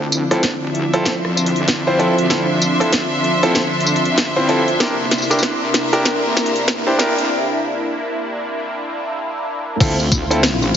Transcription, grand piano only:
0.31 C4 E4 F4 A4
0.94 C4 E4 F4 A4
1.87 C4 E4 F4 C5
1.99 C4 E4 F4 A4
2.30 C4 E4 F4 A4
2.80 C4 E4 F4 A4
3.43 C4 E4 F4 A4
4.36 C4 E4 F4 C5
4.49 C4 E4 F4 A4
4.80 D4 E4 G4 A#4
5.30 D4 E4 G4 A#4
5.93 D4 E4 G4 A#4
6.87 D4 E4 G4 C5
6.99 D4 E4 G4 A#4
9.80 C4 E4 F4 A4
10.30 C4 E4 F4 A4

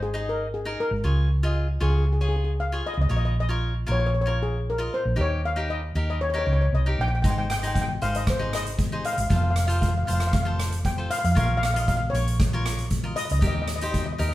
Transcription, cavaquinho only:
0.14 D#4 G#4 D#5
0.65 D#4 G#4 A#4
1.04 F4 G#4 C#5
1.43 F4 G#4 D#5
1.80 F4 G#4 C#5
2.21 F4 G#4 C#5
2.72 F4 G#4 C#5
3.09 F4 A#4 C#5
3.49 F4 A#4 C#5
3.87 F4 A#4 C#5
4.26 F4 A#4 C#5
4.78 F4 A#4 D#5
5.16 D#4 G4 A#4
5.56 D#4 G4 A#4
5.95 D#4 G4 A#4
6.34 D#4 G4 A#4
6.86 D#4 G4 A#4
7.24 D#4 G#4 C5
7.63 D#4 G#4 C5
8.02 D#4 G#4 C5
8.39 D#4 G#4 C5
8.92 D#4 G#4 C5
9.30 F4 A4 C5
9.68 F4 A4 C5
10.07 F4 A4 C5
10.45 F4 A4 C5
10.98 F4 A4 C5
11.35 F4 A#4 C#5
11.76 F4 A#4 D#5
12.15 F4 A#4 C#5
12.53 F4 A#4 C#5
13.04 F4 A#4 D#5
13.41 D#4 G4 A#4
13.82 D#4 G4 C5
14.18 D#4 G4 A#4

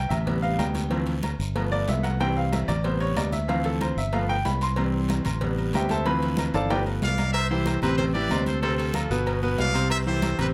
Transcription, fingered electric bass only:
0.10 A1
0.59 D2
1.39 G1
1.89 C2
2.68 A1
3.17 D2
3.97 G1
4.45 C2
5.26 A1
5.74 D2
6.54 G1
7.02 C2
7.82 A1
8.31 D2
9.10 G1
9.59 C2
10.39 A1

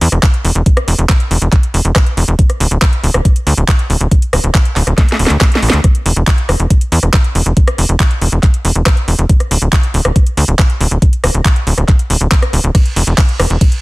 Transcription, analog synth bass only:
0.01 E2
0.12 E1
0.45 E1
0.55 E1
0.88 E1
0.99 E1
1.31 E1
1.42 E1
1.74 E1
1.85 E1
2.17 E1
2.28 E1
2.60 D1
2.71 D1
3.04 D1
3.14 D1
3.47 D2
3.58 D1
3.90 D1
4.01 D1
4.33 D1
4.44 D1
4.76 D1
4.87 D1
5.19 D1
5.30 D2
5.63 A1
5.73 D2
6.06 E1
6.17 E1
6.49 E1
6.60 E1
6.92 E2
7.03 E1
7.35 E1
7.46 E1
7.78 E1
7.89 E1
8.22 E1
8.32 E1
8.65 E1
8.76 E1
9.08 E1
9.19 E1
9.51 D1
9.62 D1
9.94 D1
10.05 D1
10.37 D2
10.48 D1
10.81 D1
10.91 D1
11.24 D1
11.34 D1
11.67 D1
11.78 D1
12.10 D1
12.21 D1
12.53 D1
12.64 D1
12.96 E1
13.07 E1
13.40 E1
13.50 E1

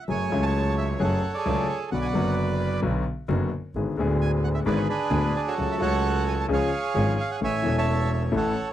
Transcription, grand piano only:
0.08 F#2 F#3 A3 C#4 G#4
0.30 C#2 C#3 F#3 G#3 A3 C#4
0.99 F#2 F#3 A3 C#4 G#4
1.46 C#2 C#3 F#3 A3 C#4 G#4
1.92 B1 B2 D3 F#3 B3 F#4
2.13 F#1 F#2 D3 F#3 B3
2.17 F#4
2.82 B1 B2 D3 F#3 B3 F#4
3.28 F#1 F#2 D3 F#3 B3 F#4
3.75 G#1 G#2 D3 G#3 B3 G#4
3.97 D1 D2 D3 G#3 B3 G#4
4.66 G#1 G#2 D3 G#3 B3 G#4
5.10 D1 D2 D3 G#3 B3 G#4
5.58 C#2 C#3 F#3 A3 C#4 A4
5.78 C#2 C#3 F#3 A3 C#4
5.83 A4
6.48 C#2 C#3 F3 G#3 C#4 G#4
6.94 G#1 G#2 F3 G#3 C#4 G#4
7.41 A1 A2 E3 A3 C#4 A4
7.62 E1 E2 E3 A3 C#4
7.67 A4
8.32 A1 A2 E3 A3 C#4 A4

